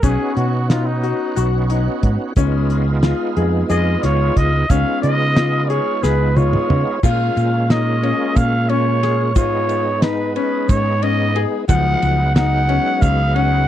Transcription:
0.03 0.16 B1 medium
0.03 2.33 B3 medium
0.03 0.50 C#4 medium
0.03 2.33 C#4 medium
0.03 2.33 D#4 medium
0.03 2.34 F#4 medium
0.03 0.35 G#4 medium
0.03 kick loud
0.03 closed hi-hat medium
0.03 shaker medium
0.36 1.12 B2 medium
0.36 0.70 F#4 medium
0.36 closed hi-hat medium
0.69 0.93 D#4 medium
0.69 0.88 F4 medium
0.69 snare loud
0.69 closed hi-hat medium
0.86 1.53 D#4 medium
1.03 1.27 F#4 medium
1.03 closed hi-hat medium
1.36 1.87 B1 medium
1.36 1.60 F#4 medium
1.36 closed hi-hat medium
1.36 shaker medium
1.70 2.17 D#4 medium
1.70 closed hi-hat medium
2.03 2.16 G#2 medium
2.03 kick medium
2.03 closed hi-hat medium
2.36 3.12 C#2 loud
2.36 4.66 G#3 medium
2.36 4.66 B3 medium
2.36 2.84 C#4 medium
2.36 4.66 D#4 medium
2.36 4.67 F4 medium
2.36 kick loud
2.36 closed hi-hat medium
2.36 shaker medium
2.70 closed hi-hat medium
3.03 3.27 F4 medium
3.03 snare loud
3.03 closed hi-hat medium
3.37 3.62 F2 loud
3.37 3.60 G#4 medium
3.37 closed hi-hat medium
3.70 3.95 F2 medium
3.70 3.94 G#4 medium
3.70 4.05 D#5 loud
3.70 closed hi-hat medium
3.70 shaker soft
4.03 4.29 C#2 medium
4.03 4.50 F4 medium
4.03 4.38 C#5 loud
4.03 snare soft
4.03 closed hi-hat medium
4.37 4.62 C#2 medium
4.37 4.71 D#5 medium
4.37 kick medium
4.37 closed hi-hat medium
4.70 4.83 C#2 loud
4.70 6.99 G#3 medium
4.70 7.00 B3 medium
4.70 5.17 C#4 medium
4.70 7.00 D#4 medium
4.70 7.00 F4 medium
4.70 5.02 F5 loud
4.70 kick loud
4.70 closed hi-hat medium
4.70 shaker medium
5.02 5.79 C#3 medium
5.02 5.70 D#5 loud
5.02 closed hi-hat medium
5.02 shaker soft
5.36 5.60 F4 medium
5.36 snare loud
5.36 closed hi-hat medium
5.69 5.93 G#4 medium
5.69 6.04 C#5 loud
5.69 closed hi-hat medium
6.03 6.54 C#2 medium
6.03 6.27 G#4 medium
6.03 6.38 B4 medium
6.03 snare medium
6.03 shaker medium
6.36 6.83 F4 medium
6.36 7.03 C#5 medium
6.36 high tom medium
6.36 shaker soft
6.53 mid tom medium
6.70 6.83 C#3 medium
6.70 mid tom loud
7.03 7.29 A#2 loud
7.03 9.32 G#3 medium
7.03 9.33 A#3 medium
7.03 9.33 C#4 medium
7.03 7.50 F4 medium
7.03 9.33 F4 medium
7.03 7.72 F5 medium
7.03 kick loud
7.03 crash medium
7.03 shaker medium
7.37 8.12 A#2 medium
7.37 ride medium
7.37 shaker soft
7.70 7.93 D#4 medium
7.70 8.38 D#5 medium
7.70 snare medium
7.70 ride medium
8.03 8.50 C#4 medium
8.03 ride medium
8.36 9.36 A#2 medium
8.36 8.71 F5 loud
8.36 kick loud
8.36 ride medium
8.36 shaker medium
8.69 8.93 C#4 medium
8.69 9.36 C#5 loud
8.69 ride medium
9.03 9.26 G#4 medium
9.03 snare soft
9.03 ride medium
9.35 10.36 G#2 loud
9.35 11.65 G#3 medium
9.35 11.65 B3 medium
9.35 11.65 D#4 medium
9.35 9.83 F4 medium
9.35 10.04 C#5 medium
9.35 kick loud
9.35 ride medium
9.35 shaker medium
9.69 ride medium
9.69 shaker soft
10.02 10.26 D#4 medium
10.02 10.35 B4 medium
10.02 snare loud
10.02 ride medium
10.36 10.83 C#4 medium
10.36 10.70 B4 medium
10.36 ride medium
10.69 11.44 G#2 loud
10.69 11.04 C#5 loud
10.69 kick loud
10.69 ride medium
10.69 shaker medium
11.02 11.26 C#4 medium
11.02 11.42 D#5 loud
11.02 ride medium
11.36 11.59 G#4 medium
11.36 ride medium
11.68 11.94 C#2 loud
11.68 12.16 F3 medium
11.68 13.68 F#3 medium
11.68 13.68 G#3 medium
11.68 13.68 B3 medium
11.68 13.68 D#4 medium
11.68 12.32 F#5 loud
11.68 kick loud
11.68 ride medium
11.68 shaker medium
12.02 12.78 C#2 loud
12.02 ride medium
12.02 shaker soft
12.35 12.59 D#4 medium
12.35 13.03 F#5 loud
12.35 snare loud
12.35 ride medium
12.69 13.15 C#4 medium
12.69 ride medium
13.01 13.68 C#2 medium
13.01 13.36 F5 loud
13.01 kick loud
13.01 ride medium
13.01 shaker medium
13.35 13.59 C#4 medium
13.35 13.68 F#5 loud
13.35 ride medium

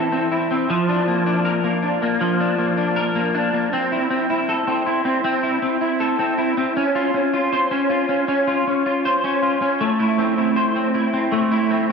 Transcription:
0.00 0.69 E3 medium
0.00 0.11 C4 medium
0.00 0.30 E4 medium
0.00 0.76 A4 medium
0.12 0.50 C4 medium
0.32 0.77 E4 soft
0.51 0.77 C4 soft
0.70 2.20 F3 medium
0.89 1.25 D4 medium
1.08 1.63 A#3 medium
1.26 1.81 D4 soft
1.45 2.95 A#4 medium
1.64 2.01 A#3 medium
1.82 2.39 D4 medium
2.02 2.57 A#3 medium
2.21 3.95 F3 medium
2.40 2.76 D4 medium
2.58 3.14 A#3 medium
2.77 3.33 D4 medium
2.96 3.80 A#4 medium
3.15 3.52 A#3 medium
3.35 3.80 D4 medium
3.54 3.72 A#3 medium
3.73 4.10 C4 medium
3.92 4.29 E4 medium
4.10 4.67 C4 medium
4.30 4.85 E4 medium
4.49 5.99 A4 medium
4.67 5.04 C4 medium
4.86 5.42 E4 medium
5.05 5.24 C4 medium
5.24 5.62 C4 medium
5.43 5.80 E4 medium
5.62 6.19 C4 soft
5.81 6.37 E4 medium
6.00 6.84 A4 medium
6.19 6.57 C4 medium
6.38 6.84 E4 medium
6.57 6.76 C4 medium
6.77 7.13 C#4 medium
6.95 7.33 F4 medium
7.14 7.70 C#4 medium
7.34 7.89 F4 soft
7.53 9.05 C5 medium
7.71 8.08 C#4 medium
7.90 8.47 F4 medium
8.09 8.27 C#4 soft
8.28 8.66 C#4 medium
8.47 8.86 F4 medium
8.67 9.23 C#4 soft
8.86 9.42 F4 soft
9.05 10.56 C5 medium
9.24 9.61 C#4 medium
9.42 9.99 F4 medium
9.62 9.88 C#4 soft
9.81 11.31 A3 medium
9.99 10.36 E4 medium
10.18 10.74 C4 medium
10.38 10.93 E4 soft
10.56 11.92 C5 medium
10.76 11.12 C4 medium
10.94 11.50 E4 medium
11.13 11.69 C4 medium
11.32 11.92 A3 medium
11.52 11.89 E4 medium
11.70 11.92 C4 medium

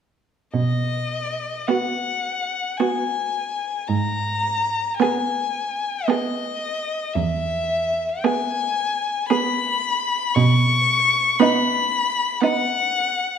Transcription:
0.54 1.47 B2 soft
0.54 1.69 D#5 medium
1.68 2.53 B3 soft
1.68 2.53 F#4 soft
1.68 2.79 F#5 medium
2.78 3.64 B3 soft
2.78 3.64 F#4 soft
2.78 3.89 G#5 medium
3.88 4.79 G#2 soft
3.88 4.98 A#5 medium
4.98 5.82 B3 soft
4.98 5.83 G#4 soft
4.98 6.07 G#5 medium
6.06 6.90 B3 soft
6.06 6.91 G#4 soft
6.06 7.16 D#5 medium
7.14 8.04 E2 medium
7.14 8.24 E5 medium
8.23 9.05 B3 soft
8.23 9.05 G#4 soft
8.23 9.29 G#5 medium
9.29 10.12 B3 soft
9.29 10.12 G#4 soft
9.29 10.36 B5 medium
10.35 11.22 B2 medium
10.35 11.41 C#6 medium
11.40 12.18 B3 medium
11.40 12.19 D#4 soft
11.40 12.42 B5 medium
12.40 13.20 B3 soft
12.40 13.21 D#4 soft
12.40 13.38 F#5 medium

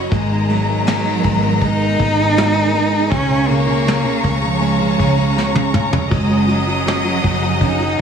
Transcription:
0.00 0.14 F#3 medium
0.00 0.14 C#4 medium
0.00 0.10 C#5 medium
0.00 3.08 D#5 medium
0.12 1.20 G#1 loud
0.12 0.47 G#3 medium
0.12 0.51 G#3 loud
0.12 3.09 B3 medium
0.12 6.08 G#4 medium
0.12 3.08 A#4 medium
0.12 3.08 A#5 loud
0.12 8.01 A#5 medium
0.12 kick loud
0.12 ride medium
0.30 0.66 D#4 medium
0.49 1.63 F#3 medium
0.49 0.84 G#3 medium
0.49 ride medium
0.67 1.03 D#4 soft
0.86 1.22 G#3 medium
0.86 snare loud
0.86 ride medium
1.05 1.42 D#4 soft
1.24 1.96 G#1 loud
1.24 1.60 G#3 medium
1.24 kick medium
1.24 ride medium
1.43 1.79 D#4 medium
1.61 1.98 G#3 medium
1.61 3.12 D#4 loud
1.61 kick medium
1.61 ride medium
1.80 2.16 D#4 medium
1.99 3.08 G#1 medium
1.99 2.36 G#3 medium
1.99 kick medium
1.99 ride medium
2.18 2.53 D#4 medium
2.37 2.72 G#3 medium
2.37 snare loud
2.37 ride medium
2.55 2.90 D#4 medium
2.73 3.10 G#3 medium
2.73 ride medium
2.91 3.10 D#4 medium
3.10 4.20 C#2 loud
3.10 3.28 C#3 medium
3.10 3.50 C#4 loud
3.10 8.01 C#4 medium
3.10 6.07 C#5 medium
3.10 6.09 F5 medium
3.10 6.08 C#6 medium
3.10 kick loud
3.10 ride medium
3.29 3.47 C#3 soft
3.49 3.65 C#3 medium
3.49 4.42 A#3 loud
3.49 ride medium
3.66 3.84 C#3 soft
3.85 4.02 C#3 medium
3.85 snare loud
3.85 ride medium
4.04 4.21 C#3 medium
4.23 4.95 C#2 loud
4.23 4.40 C#3 soft
4.23 kick medium
4.23 ride medium
4.42 4.78 C#3 medium
4.42 5.51 F3 medium
4.60 6.07 G#3 medium
4.60 ride medium
4.79 4.96 C#3 medium
4.79 ride soft
4.97 6.08 C#2 medium
4.97 5.15 C#3 medium
4.97 kick medium
4.97 ride medium
5.16 5.34 C#3 medium
5.35 5.53 C#3 medium
5.35 snare medium
5.54 5.71 C#3 soft
5.54 high tom medium
5.73 5.90 C#3 medium
5.73 mid tom medium
5.91 6.10 C#3 medium
5.91 floor tom medium
6.10 7.20 F#1 medium
6.10 6.28 F#3 medium
6.10 6.53 G#3 loud
6.10 8.01 G#4 medium
6.10 7.95 D#5 medium
6.10 8.01 F#5 medium
6.10 7.95 D#6 medium
6.10 kick loud
6.10 ride medium
6.29 6.46 F#3 soft
6.48 6.66 F#3 medium
6.48 ride medium
6.52 7.66 F#3 loud
6.67 6.84 F#3 soft
6.85 7.03 F#3 medium
6.85 snare loud
6.85 ride medium
7.05 7.22 F#3 soft
7.23 7.95 F#1 medium
7.23 7.41 F#3 medium
7.23 kick medium
7.23 ride medium
7.42 7.78 F#3 medium
7.61 8.01 C#4 medium
7.61 8.01 D#4 loud
7.61 kick medium
7.61 ride medium
7.80 7.97 F#3 soft

